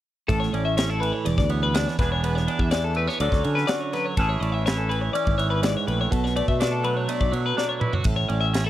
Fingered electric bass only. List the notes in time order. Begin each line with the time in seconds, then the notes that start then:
0.30 A1
0.53 A1
1.27 E1
1.38 D2
1.99 E1
2.59 E2
3.20 D2
3.32 D2
3.45 D3
4.18 A1
4.41 A1
5.27 G#1
5.88 A#1
6.13 B1
6.49 B2
7.21 B1
7.33 B2
8.05 A1
8.30 A1